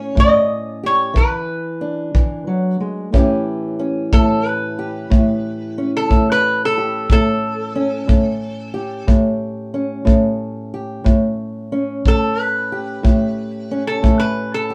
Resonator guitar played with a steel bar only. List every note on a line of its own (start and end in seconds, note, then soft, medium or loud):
0.00 0.19 C#5 medium
0.20 0.86 D#5 medium
0.86 1.18 C#5 medium
1.17 2.44 B4 medium
4.13 4.47 A4 medium
4.47 5.91 B4 medium
5.97 6.27 A4 medium
6.32 6.61 B4 medium
6.65 7.11 A4 medium
7.12 9.05 A4 medium
12.08 12.40 A4 medium
12.40 13.84 B4 medium
13.87 14.19 A4 medium
14.20 14.52 B4 medium
14.54 14.74 A4 medium